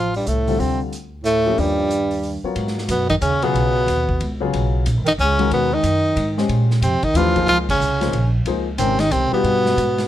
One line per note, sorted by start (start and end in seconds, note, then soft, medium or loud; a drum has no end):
0.00 0.23 A1 medium
0.00 0.15 F3 medium
0.00 0.15 F4 medium
0.14 0.29 G2 medium
0.14 0.29 G3 medium
0.14 open hi-hat soft
0.27 0.57 C2 medium
0.27 0.63 A2 medium
0.27 0.61 A3 medium
0.27 closed hi-hat medium
0.47 0.90 D3 medium
0.47 0.90 G3 medium
0.47 0.90 C4 medium
0.47 0.91 F4 medium
0.47 0.91 A4 medium
0.47 open hi-hat soft
0.59 1.54 D2 medium
0.59 0.81 C3 medium
0.59 0.80 C4 medium
0.59 open hi-hat soft
0.93 closed hi-hat soft
1.24 1.58 A2 medium
1.24 1.61 A3 loud
1.24 closed hi-hat soft
1.46 1.89 F3 medium
1.46 1.89 A#3 medium
1.46 1.89 C#4 medium
1.46 1.89 D#4 medium
1.46 1.89 G4 medium
1.57 2.40 D#2 medium
1.57 2.44 G2 medium
1.57 2.45 G3 loud
1.57 open hi-hat soft
1.91 closed hi-hat soft
2.11 open hi-hat soft
2.23 open hi-hat soft
2.43 2.87 F#3 medium
2.43 2.87 B3 medium
2.43 2.87 F4 medium
2.43 2.87 A#4 soft
2.43 2.88 C#5 medium
2.43 muted upright bass stroke soft
2.55 2.88 G#2 medium
2.55 ride medium
2.68 snare soft
2.78 snare soft
2.88 3.21 F#2 medium
2.88 3.08 B2 medium
2.88 3.09 B3 medium
2.88 hi-hat pedal medium
2.88 ride medium
3.09 3.15 D#3 medium
3.09 3.15 D#4 medium
3.09 kick soft
3.09 ride soft
3.21 3.53 D#2 medium
3.21 3.44 C#3 medium
3.21 3.45 C#4 medium
3.21 hi-hat pedal medium
3.21 ride medium
3.42 4.41 B2 medium
3.42 3.86 C#3 medium
3.42 3.86 F#3 medium
3.42 4.42 B3 medium
3.42 3.86 B3 medium
3.42 3.86 F4 medium
3.42 3.86 G#4 medium
3.42 ride soft
3.54 3.86 B1 medium
3.54 ride medium
3.86 4.19 D#2 medium
3.86 hi-hat pedal soft
3.86 ride medium
4.09 kick medium
4.20 4.52 C#2 medium
4.20 ride medium
4.41 4.84 C#3 medium
4.41 4.83 F#3 medium
4.41 4.84 B3 medium
4.41 4.84 F4 medium
4.41 4.84 G#4 medium
4.53 4.86 B1 medium
4.53 ride medium
4.86 4.97 A#1 medium
4.86 hi-hat pedal medium
4.86 ride medium
4.97 5.07 G#1 medium
5.05 5.18 F#1 medium
5.05 5.11 D#3 medium
5.05 5.13 D#4 loud
5.05 ride medium
5.18 5.50 C#2 loud
5.18 5.49 C#3 medium
5.18 5.50 C#4 loud
5.18 hi-hat pedal medium
5.39 5.82 D#3 medium
5.39 5.82 G#3 medium
5.39 5.82 C#4 medium
5.39 5.82 F#4 medium
5.39 5.82 A#4 medium
5.39 ride soft
5.51 5.83 D#2 medium
5.51 5.75 B2 medium
5.51 5.75 B3 loud
5.51 ride medium
5.73 6.38 D#3 medium
5.73 6.39 D#4 loud
5.83 6.16 F#2 medium
5.83 hi-hat pedal medium
5.83 ride medium
6.16 6.48 G#2 medium
6.16 ride medium
6.38 6.80 G#3 medium
6.38 6.80 C#4 medium
6.38 6.81 G4 medium
6.38 6.81 C5 medium
6.38 6.81 D#5 medium
6.38 snare soft
6.49 6.81 A#2 medium
6.49 ride medium
6.71 snare soft
6.81 7.01 F2 medium
6.81 7.05 C3 medium
6.81 7.05 C4 medium
6.81 hi-hat pedal medium
6.81 ride medium
7.03 7.19 D#3 medium
7.03 7.18 D#4 medium
7.03 muted upright bass stroke soft
7.03 kick medium
7.03 ride soft
7.14 7.46 D#2 medium
7.14 7.34 E3 medium
7.14 7.49 F3 medium
7.14 7.35 A3 medium
7.14 7.35 D4 medium
7.14 7.48 F4 loud
7.14 7.35 G4 medium
7.14 7.35 B4 medium
7.14 hi-hat pedal soft
7.14 ride medium
7.36 7.65 F3 medium
7.36 7.65 A#3 medium
7.36 7.65 D#4 medium
7.36 7.65 G#4 medium
7.36 7.65 C5 medium
7.36 kick soft
7.36 ride soft
7.46 7.79 C#2 medium
7.46 7.58 F3 medium
7.46 7.58 F4 loud
7.46 ride medium
7.69 8.31 C#3 medium
7.69 8.31 C#4 medium
7.69 kick medium
7.69 crash medium
7.80 8.12 C2 medium
7.80 hi-hat pedal medium
8.01 8.12 F3 medium
8.01 8.13 A#3 medium
8.01 8.13 D#4 medium
8.01 8.13 G#4 medium
8.01 8.13 C5 medium
8.01 snare soft
8.01 ride soft
8.12 8.45 A#1 medium
8.12 ride medium
8.45 8.78 C#2 medium
8.45 8.65 F3 medium
8.45 8.65 A#3 medium
8.45 8.65 D#4 medium
8.45 8.65 G#4 medium
8.45 8.66 C5 medium
8.45 ride medium
8.78 9.10 G#1 medium
8.78 9.00 C3 medium
8.78 9.28 D#3 medium
8.78 9.28 G#3 medium
8.78 9.01 C4 medium
8.78 9.28 C#4 medium
8.78 9.29 G4 medium
8.78 9.29 A#4 medium
8.78 hi-hat pedal medium
8.78 ride medium
8.99 9.13 D#3 medium
8.99 9.13 D#4 loud
8.99 snare medium
8.99 ride soft
9.11 9.30 C2 medium
9.11 9.31 C3 medium
9.11 9.32 C4 medium
9.11 hi-hat pedal medium
9.11 ride medium
9.32 10.08 B2 medium
9.32 9.75 G3 medium
9.32 9.75 B3 medium
9.32 10.08 B3 medium
9.32 9.75 D#4 medium
9.32 9.76 F4 medium
9.32 9.75 G4 medium
9.32 muted upright bass stroke soft
9.44 9.76 G2 medium
9.44 ride soft
9.66 snare soft
9.77 10.08 G#2 medium
9.77 hi-hat pedal medium
9.77 ride medium
9.98 snare soft
9.98 ride soft